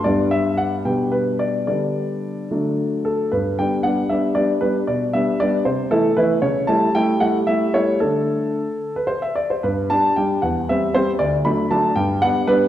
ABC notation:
X:1
M:6/8
L:1/16
Q:3/8=76
K:G
V:1 name="Grand piano"
d2 e2 f2 g2 B2 d2 | d8- d2 A2 | B2 g2 f2 e2 d2 B2 | d2 e2 d2 c2 A2 B2 |
^c2 a2 g2 f2 e2 c2 | A6- A B c e d c | B2 a2 g2 f2 e2 c2 | d2 b2 a2 g2 f2 B2 |]
V:2 name="Grand piano"
[G,,G,B,D]6 [B,,G,B,D]6 | [D,G,B,D]6 [D,F,A,D]6 | G,,2 [G,B,D]2 [G,B,D]2 [G,B,D]2 [G,B,D]2 [G,B,D]2 | B,,2 [G,B,D]2 [G,B,D]2 C,2 [E,A,E]2 [E,A,E]2 |
^C,2 [G,A,E]2 [G,A,E]2 [G,A,E]2 [G,A,E]2 [G,A,E]2 | [D,A,D]6 z6 | G,,2 [G,D]2 [G,D]2 E,,2 [G,C]2 [G,C]2 | D,,2 [F,A,D]2 [F,A,D]2 G,,2 [G,B,D]2 [G,B,D]2 |]